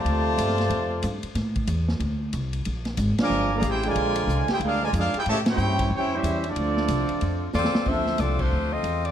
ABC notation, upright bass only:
X:1
M:4/4
L:1/8
Q:"Swing" 1/4=184
K:Dm
V:1 name="Upright bass" clef=bass
D,,2 G,,2 F,,2 G,, z | A,,2 E,,2 D,,2 C,,2 | B,,,2 _A,,, z G,,,2 =A,,,2 | B,,,2 C,, z D,,2 F,, z |
A,,2 G,,2 F,,2 E,,2 | D,,2 C,, z F,,2 E,, z | D,,2 C,,2 D,,2 E,,2 |]